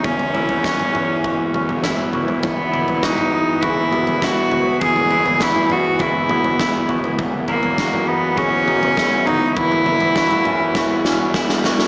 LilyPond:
<<
  \new Staff \with { instrumentName = "Clean electric guitar" } { \time 4/4 \key e \lydian \tempo 4 = 101 e,8 e'8 fis'8 cis'8 fis'8 cis'8 e'8 fis'8 | e,8 e'8 fis'8 b8 fis'8 b8 e'8 fis'8 | e,8 e'8 fis'8 b8 fis'8 b8 e'8 fis'8 | e,8 e'8 fis'8 dis'8 fis'8 dis'8 e'8 fis'8 |
e,8 e'8 fis'8 cis'8 fis'8 cis'8 e'8 fis'8 | }
  \new Staff \with { instrumentName = "Handpan" } { \time 4/4 \key e \lydian r8 e'4 e'4 fis'8 e'4 | e'4 e4 gis'8 fis'4 e'8~ | e'8 e'4 e'4 fis'8 e'4 | r2 gis'8 fis'4 r8 |
r8 e'4 e'4 fis'8 e'4 | }
  \new Staff \with { instrumentName = "Cello" } { \time 4/4 \key e \lydian cis'2. r4 | b4 dis'4 e'4 fis'4 | gis'4 e'8 fis'8 e'4. r8 | r8 ais4 b8 cis'4. dis'8 |
e'2. r4 | }
  \new Staff \with { instrumentName = "Harmonium" } { \time 4/4 \key e \lydian r1 | fis'1 | gis'1 | fis'1~ |
fis'1 | }
  \new Staff \with { instrumentName = "Harmonium" } { \clef bass \time 4/4 \key e \lydian << { r1 | gis1~ | gis1 | ais1~ |
ais1 | } \\ { r1 | e1~ | e1 | fis1 |
e1 | } >> }
  \new Staff \with { instrumentName = "Picked electric bass" } { \clef bass \time 4/4 \key e \lydian e,1 | e,1 | e,1 | e,1 |
e,1 | }
  \new DrumStaff \with { instrumentName = "Drums" } \drummode { \time 4/4 <bd tomfh>16 tomfh16 tomfh16 tomfh16 <bd sn>16 toml16 toml8 <bd tomfh>8 <tomfh toml>16 tomfh16 <bd sn toml>8 tomfh16 tomfh16 | <bd tomfh>8 tomfh16 tomfh16 <bd sn>16 toml8. <bd tomfh>8 tomfh16 tomfh16 <bd sn>8 tomfh8 | <bd tomfh>16 tomfh16 tomfh16 tomfh16 <bd sn>16 toml16 toml8 <bd tomfh>8 <tomfh toml>16 tomfh16 <bd sn toml>8 tomfh16 tomfh16 | <bd tomfh>8 tomfh16 tomfh16 <bd sn>16 toml8. <bd tomfh>8 tomfh16 tomfh16 <bd sn>8 tomfh8 |
<bd tomfh>16 tomfh16 tomfh16 tomfh16 <bd sn>16 toml16 toml8 <bd sn>8 sn8 <bd sn>16 sn16 sn16 sn16 | }
>>